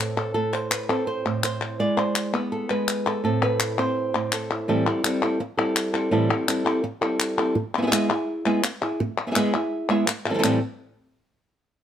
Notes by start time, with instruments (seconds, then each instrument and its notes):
Already playing: nylon-string guitar A2 C4 A4 B4
0.17 nylon-string guitar A4, clap
0.34 nylon-string guitar A2 A4
0.53 nylon-string guitar C5
0.71 nylon-string guitar B4, clap
0.89 nylon-string guitar C4 A4, clap
1.07 nylon-string guitar C5
1.25 nylon-string guitar A2, clap
1.43 nylon-string guitar C5, clap
1.79 nylon-string guitar G#3 E4 D5
1.97 nylon-string guitar C5
2.16 clap
2.33 nylon-string guitar B3 B4
2.52 nylon-string guitar A4
2.70 nylon-string guitar G#3 B4
2.88 clap
3.06 nylon-string guitar A4, clap
3.24 nylon-string guitar A2 C4 E4 A4
3.43 nylon-string guitar B4
3.60 clap
3.78 nylon-string guitar C4 C5
4.14 nylon-string guitar A2, clap
4.32 nylon-string guitar A4, clap
4.51 nylon-string guitar E4, clap
4.68 nylon-string guitar A2 E3 G3 C4 E4 A4
4.86 nylon-string guitar G3 C4 E4 A4
5.03 nylon-string guitar G3 C4 E4 A4, clap
5.22 nylon-string guitar G3 C4 E4 A4
5.40 muted nylon-string guitar stroke
5.57 nylon-string guitar G3 C4 E4 A4
5.76 clap
5.93 nylon-string guitar G3 C4 E4 A4
6.11 nylon-string guitar A2 E3 G3 C4 E4 A4
6.29 nylon-string guitar G3 C4 E4 A4
6.47 nylon-string guitar G3 C4 E4 A4, clap
6.65 nylon-string guitar G3 C4 E4 A4, clap
6.84 muted nylon-string guitar stroke
7.01 nylon-string guitar G3 C4 E4 A4, clap
7.20 clap
7.38 nylon-string guitar G3 C4 E4 A4
7.55 muted nylon-string guitar stroke
7.78 nylon-string guitar B3 E4 G#4 E5
7.82 nylon-string guitar B3 E4 G#4 E5
7.87 nylon-string guitar B3 E4 G#4 E5
7.91 nylon-string guitar G#3 B3 E4 G#4 E5, clap
8.09 nylon-string guitar E4 G#4 E5, clap
8.45 nylon-string guitar G#3 B3 E4 G#4 E5, clap
8.64 muted nylon-string guitar stroke, clap
8.81 nylon-string guitar E4 G#4 E5, clap
9.00 muted nylon-string guitar stroke
9.18 clap
9.27 nylon-string guitar B3 E4 G#4 E5
9.31 nylon-string guitar B3 E4 G#4 E5
9.36 nylon-string guitar G#3 B3 E4 G#4 E5, clap
9.54 nylon-string guitar E4 G#4 E5
9.89 nylon-string guitar G#3 B3 E4 G#4 E5
10.07 muted nylon-string guitar stroke, clap
10.25 nylon-string guitar E4 G#4 E5
10.30 nylon-string guitar E3 G3 C4 E4 A4
10.34 nylon-string guitar E3 G3 C4 E4 A4
10.39 nylon-string guitar E3 G3 C4 E4 A4
10.43 nylon-string guitar A2 E3 G3 C4 E4 A4, clap